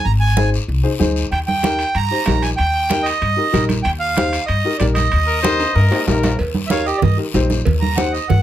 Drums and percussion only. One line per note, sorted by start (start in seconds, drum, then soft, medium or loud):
0.05 high conga soft
0.05 long guiro medium
0.37 high conga medium
0.37 short guiro medium
0.54 short guiro medium
0.69 high conga soft
0.69 long guiro medium
1.01 high conga medium
1.01 short guiro medium
1.16 short guiro medium
1.32 high conga soft
1.32 high timbale medium
1.32 long guiro medium
1.48 high conga medium
1.63 high conga medium
1.63 high timbale medium
1.63 short guiro medium
1.79 high timbale medium
1.79 short guiro medium
1.95 high conga soft
1.95 high timbale medium
1.95 long guiro medium
2.26 high conga medium
2.26 high timbale medium
2.26 low timbale medium
2.26 short guiro medium
2.42 high timbale medium
2.42 short guiro medium
2.58 high conga soft
2.58 high timbale medium
2.58 long guiro medium
2.90 high conga medium
2.90 high timbale medium
2.90 short guiro medium
3.06 high timbale medium
3.06 short guiro medium
3.22 high conga soft
3.22 high timbale medium
3.22 long guiro medium
3.53 high conga medium
3.53 high timbale medium
3.53 short guiro medium
3.69 high conga medium
3.69 high timbale medium
3.69 short guiro medium
3.85 high conga soft
3.85 high timbale medium
3.85 long guiro medium
4.17 high conga medium
4.17 high timbale medium
4.17 short guiro medium
4.33 high timbale medium
4.33 short guiro medium
4.48 high conga soft
4.48 high timbale medium
4.48 long guiro medium
4.80 high conga medium
4.80 high timbale medium
4.80 short guiro medium
4.95 high conga medium
4.95 high timbale medium
4.95 short guiro medium
5.12 high conga soft
5.12 high timbale medium
5.12 long guiro medium
5.44 high conga medium
5.44 high timbale medium
5.44 short guiro medium
5.60 high timbale medium
5.60 short guiro medium
5.76 high conga soft
5.76 high timbale medium
5.76 long guiro medium
5.92 low timbale medium
6.07 high conga medium
6.07 low timbale medium
6.07 short guiro medium
6.23 high conga medium
6.23 low timbale medium
6.23 short guiro medium
6.39 cowbell loud
6.39 high conga soft
6.39 long guiro medium
6.55 high conga medium
6.70 cowbell medium
6.70 high conga loud
6.70 short guiro medium
6.86 short guiro medium
7.02 cowbell medium
7.02 high conga soft
7.02 low conga medium
7.02 long guiro medium
7.34 cowbell medium
7.34 high conga medium
7.34 short guiro medium
7.50 high conga medium
7.50 short guiro medium
7.65 cowbell loud
7.65 high conga soft
7.65 low conga medium
7.65 long guiro medium
7.82 high conga medium
7.98 cowbell medium
7.98 high conga loud
7.98 short guiro medium
8.14 short guiro medium
8.29 cowbell medium
8.29 high conga soft
8.29 low conga medium
8.29 long guiro medium